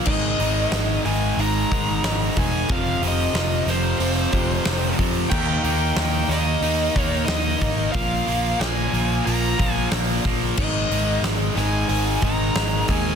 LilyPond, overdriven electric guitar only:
\new Staff \with { instrumentName = "Overdriven electric guitar" } { \clef bass \time 4/4 \key aes \major \tempo 4 = 91 <aes, ees aes>8 <aes, ees aes>8 <aes, ees aes>8 <aes, ees aes>8 <aes, ees aes>8 <aes, ees aes>8 <aes, ees aes>8 <aes, ees aes>8 | <f, c f>8 <f, c f>8 <f, c f>8 <f, c f>8 <f, c f>8 <f, c f>8 <f, c f>8 <f, c f>8 | <ees bes ees'>8 <ees bes ees'>8 <ees bes ees'>8 <ees bes ees'>8 <ees bes ees'>8 <ees bes ees'>8 <ees bes ees'>8 <ees bes ees'>8 | <bes, f bes>8 <bes, f bes>8 <bes, f bes>8 <bes, f bes>8 <bes, f bes>8 <bes, f bes>8 <bes, f bes>8 <bes, f bes>8 |
<aes, ees aes>8 <aes, ees aes>8 <aes, ees aes>8 <aes, ees aes>8 <aes, ees aes>8 <aes, ees aes>8 <aes, ees aes>8 <aes, ees aes>8 | }